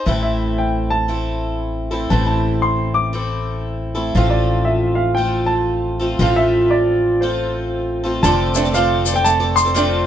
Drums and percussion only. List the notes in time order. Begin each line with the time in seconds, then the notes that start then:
8.24 shaker
8.55 shaker
8.65 shaker
8.74 shaker
9.06 shaker
9.16 shaker
9.25 shaker
9.57 shaker
9.66 shaker
9.76 shaker